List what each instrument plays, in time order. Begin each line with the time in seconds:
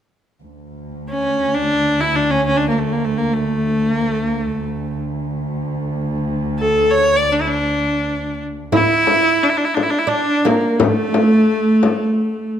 0.42 cello section D2
1.09 viola C#4
1.54 viola D4
2.00 viola E4
2.16 viola D4
2.31 viola C#4
2.46 viola C#4
2.57 viola D4
2.69 viola A#3
2.80 viola A3
2.92 viola A#3
3.05 viola A3
3.18 viola A#3
3.33 viola A3
3.94 viola A#3
4.07 viola A3
4.28 viola A#3
4.40 viola A3
4.58 cello section D2
6.59 viola A4
6.91 viola C#5
7.16 viola D5
7.33 viola D4
7.41 viola E4
7.47 viola D4
8.72 oud E4, viola E4, frame drum
9.07 frame drum
9.43 viola D4
9.50 viola E4
9.57 viola D4
9.65 viola E4
9.74 viola D4, frame drum
9.83 viola E4
9.90 viola D4
9.98 viola E4
10.07 oud D4, viola D4
10.45 oud A#3, viola A#3, frame drum
10.80 oud A3, viola A3, frame drum
11.14 frame drum
11.83 frame drum